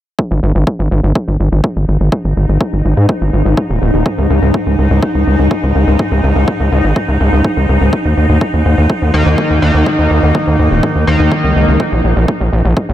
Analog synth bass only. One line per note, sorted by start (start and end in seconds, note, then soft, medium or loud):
0.31 0.40 G#1 medium
0.43 0.52 G#1 loud
0.55 0.64 G#1 medium
0.79 0.89 G#1 medium
0.91 1.01 G#1 loud
1.03 1.13 G#1 medium
1.28 1.37 G#1 medium
1.40 1.49 G#1 medium
1.52 1.61 G#1 medium
1.76 1.85 G#1 medium
1.88 1.97 G#1 medium
2.00 2.10 G#1 medium
2.24 2.34 G#1 medium
2.36 2.46 G#1 medium
2.49 2.58 G#1 medium
2.73 2.82 G#1 medium
2.85 2.94 G#1 loud
2.97 3.06 G#2 medium
3.21 3.30 G#1 medium
3.33 3.43 G#1 medium
3.45 3.55 G#1 medium
3.70 3.79 D#1 medium
3.82 3.91 D#1 medium
3.94 4.03 D#1 medium
4.18 4.27 C#2 medium
4.30 4.39 C#2 loud
4.42 4.51 C#2 medium
4.66 4.76 C#2 medium
4.78 4.88 C#2 medium
4.90 5.00 C#2 medium
5.15 5.24 C#2 medium
5.27 5.36 C#2 medium
5.39 5.48 C#2 medium
5.63 5.72 C#2 medium
5.75 5.85 C#2 loud
5.87 5.97 C#2 medium
6.11 6.21 C#2 medium
6.23 6.33 C#2 loud
6.36 6.45 C#2 medium
6.60 6.69 C#2 medium
6.72 6.81 C#2 medium
6.84 6.93 G#1 medium
7.08 7.18 C#2 medium
7.20 7.30 C#2 medium
7.32 7.42 C#2 medium
7.57 7.66 C#2 medium
7.69 7.78 C#2 loud
7.81 7.90 C#2 medium
8.05 8.14 D#2 medium
8.17 8.26 D#2 loud
8.29 8.39 D#2 medium
8.53 8.63 D#2 medium
8.65 8.75 D#2 medium
8.78 8.87 D#2 medium
9.02 9.11 D#2 medium
9.14 9.23 D#2 medium
9.26 9.35 D#2 medium
9.50 9.60 D#2 medium
9.62 9.72 D#2 medium
9.74 9.84 D#2 medium
9.99 10.08 D#2 medium
10.11 10.20 D#2 loud
10.23 10.32 D#2 medium
10.47 10.56 D#2 medium
10.59 10.68 D#2 medium
10.71 10.80 D#1 medium
10.95 11.05 D#2 medium
11.07 11.17 D#2 medium
11.20 11.29 D#2 medium
11.44 11.53 C#2 medium
11.56 11.65 C#2 loud
11.68 11.77 C#2 medium
11.92 12.01 A#1 medium
12.04 12.14 A#1 loud
12.16 12.26 A#1 medium
12.40 12.50 A#1 medium
12.53 12.62 A#1 loud
12.65 12.74 A#1 medium
12.89 12.93 A#1 medium